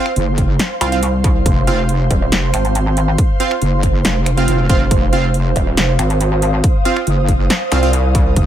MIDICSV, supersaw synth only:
0, 0, Header, 1, 2, 480
1, 0, Start_track
1, 0, Tempo, 431655
1, 1621, Time_signature, 4, 2, 24, 8
1, 9409, End_track
2, 0, Start_track
2, 0, Title_t, "Supersaw synth"
2, 0, Program_c, 0, 81
2, 901, Note_on_c, 0, 60, 82
2, 901, Note_on_c, 0, 65, 79
2, 901, Note_on_c, 0, 77, 98
2, 983, Note_off_c, 0, 60, 0
2, 983, Note_off_c, 0, 65, 0
2, 983, Note_off_c, 0, 77, 0
2, 1024, Note_on_c, 0, 60, 81
2, 1024, Note_on_c, 0, 65, 74
2, 1024, Note_on_c, 0, 77, 89
2, 1101, Note_off_c, 0, 77, 0
2, 1102, Note_off_c, 0, 60, 0
2, 1102, Note_off_c, 0, 65, 0
2, 1861, Note_on_c, 0, 60, 95
2, 1861, Note_on_c, 0, 65, 90
2, 1861, Note_on_c, 0, 77, 106
2, 1991, Note_off_c, 0, 60, 0
2, 1991, Note_off_c, 0, 65, 0
2, 1991, Note_off_c, 0, 77, 0
2, 3781, Note_on_c, 0, 60, 92
2, 3781, Note_on_c, 0, 65, 86
2, 3781, Note_on_c, 0, 77, 104
2, 3911, Note_off_c, 0, 60, 0
2, 3911, Note_off_c, 0, 65, 0
2, 3911, Note_off_c, 0, 77, 0
2, 4865, Note_on_c, 0, 60, 78
2, 4865, Note_on_c, 0, 65, 73
2, 4865, Note_on_c, 0, 77, 88
2, 5193, Note_off_c, 0, 60, 0
2, 5193, Note_off_c, 0, 65, 0
2, 5193, Note_off_c, 0, 77, 0
2, 5221, Note_on_c, 0, 60, 90
2, 5221, Note_on_c, 0, 65, 79
2, 5221, Note_on_c, 0, 77, 97
2, 5351, Note_off_c, 0, 60, 0
2, 5351, Note_off_c, 0, 65, 0
2, 5351, Note_off_c, 0, 77, 0
2, 5700, Note_on_c, 0, 60, 97
2, 5701, Note_on_c, 0, 65, 87
2, 5701, Note_on_c, 0, 77, 108
2, 5831, Note_off_c, 0, 60, 0
2, 5831, Note_off_c, 0, 65, 0
2, 5831, Note_off_c, 0, 77, 0
2, 7621, Note_on_c, 0, 60, 94
2, 7621, Note_on_c, 0, 65, 89
2, 7621, Note_on_c, 0, 77, 104
2, 7751, Note_off_c, 0, 60, 0
2, 7751, Note_off_c, 0, 65, 0
2, 7752, Note_off_c, 0, 77, 0
2, 8580, Note_on_c, 0, 60, 88
2, 8581, Note_on_c, 0, 65, 81
2, 8581, Note_on_c, 0, 77, 95
2, 8662, Note_off_c, 0, 60, 0
2, 8663, Note_off_c, 0, 65, 0
2, 8663, Note_off_c, 0, 77, 0
2, 8704, Note_on_c, 0, 60, 81
2, 8704, Note_on_c, 0, 65, 74
2, 8704, Note_on_c, 0, 77, 92
2, 8782, Note_off_c, 0, 60, 0
2, 8782, Note_off_c, 0, 65, 0
2, 8782, Note_off_c, 0, 77, 0
2, 9409, End_track
0, 0, End_of_file